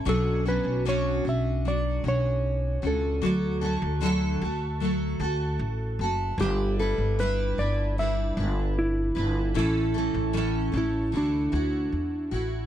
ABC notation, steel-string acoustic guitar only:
X:1
M:4/4
L:1/8
Q:1/4=76
K:D
V:1 name="Steel-string acoustic guitar"
[B,,F,CDF] [B,,F,CDF] [B,,F,CDF] [CDF] [F,DF] [CDF]2 [CDF] | [D,F,A,FA] [D,F,A,FA] [D,F,A,FA] [A,FA] [F,A,FA] [A,FA]2 [A,FA] | [G,DEB] [G,DEB] [G,DEB] [DEB] [G,DEB] [DEB]2 [DEB] | [A,,E,A,CEA] [A,,E,A,CEA] [A,,E,A,CEA] [A,CEA] [E,A,EF] [A,EF]2 [A,EF] |]